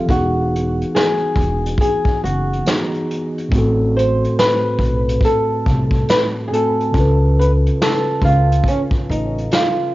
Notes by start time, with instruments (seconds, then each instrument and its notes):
Already playing: tine electric piano C4 A4
0.05 tine electric piano E3 B3, kick
0.09 upright bass E1, tine electric piano D#4 F#4, nylon-string guitar F#4, closed hi-hat
0.14 tine electric piano G#4
0.55 closed hi-hat
0.81 closed hi-hat
0.95 nylon-string guitar G#4, snare, closed hi-hat
1.36 upright bass E1, kick
1.40 closed hi-hat
1.66 closed hi-hat
1.78 nylon-string guitar G#4, kick, closed hi-hat
2.05 kick
2.24 upright bass F#1, nylon-string guitar F#4, closed hi-hat
2.53 closed hi-hat
2.65 tine electric piano E3 B3 D#4 F#4, nylon-string guitar D#4, snare, closed hi-hat
2.69 tine electric piano G#4
2.94 closed hi-hat
3.10 closed hi-hat
3.38 closed hi-hat
3.49 upright bass A1, tine electric piano A2 A3, kick
3.53 tine electric piano C4 F#4, closed hi-hat
3.58 tine electric piano A4
3.96 nylon-string guitar C5, closed hi-hat
4.24 closed hi-hat
4.39 nylon-string guitar B4, snare, closed hi-hat
4.79 upright bass B1, kick
4.83 closed hi-hat
5.09 closed hi-hat
5.21 nylon-string guitar A4, kick, closed hi-hat
5.66 upright bass C2, kick, closed hi-hat
5.91 kick
5.95 closed hi-hat
6.09 nylon-string guitar B4, snare, closed hi-hat
6.48 tine electric piano A2, nylon-string guitar G#4
6.52 tine electric piano A3 C4 F#4 G#5, nylon-string guitar A4, closed hi-hat
6.81 closed hi-hat
6.91 upright bass C#2, tine electric piano C#3 C#4, kick
6.95 tine electric piano F4 A4, closed hi-hat
7.00 tine electric piano B4
7.40 nylon-string guitar B4, closed hi-hat
7.67 closed hi-hat
7.82 nylon-string guitar A4, snare, closed hi-hat
8.22 upright bass C#2, nylon-string guitar F4, kick
8.26 closed hi-hat
8.52 closed hi-hat
8.64 kick, closed hi-hat
8.68 nylon-string guitar C#4
8.91 kick
9.09 upright bass A1, nylon-string guitar D#4, closed hi-hat
9.38 closed hi-hat
9.51 nylon-string guitar F4, snare, closed hi-hat